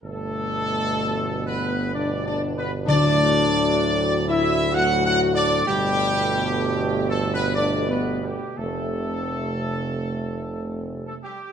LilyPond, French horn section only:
\new Staff \with { instrumentName = "French horn section" } { \time 3/4 \key g \major \tempo 4 = 63 a4. b8 \tuplet 3/2 { d'8 d'8 b8 } | d'4. e'8 \tuplet 3/2 { fis'8 fis'8 d'8 } | g4. a16 b16 \tuplet 3/2 { d'8 b8 g8 } | a2~ \tuplet 3/2 { a8. a16 g8 } | }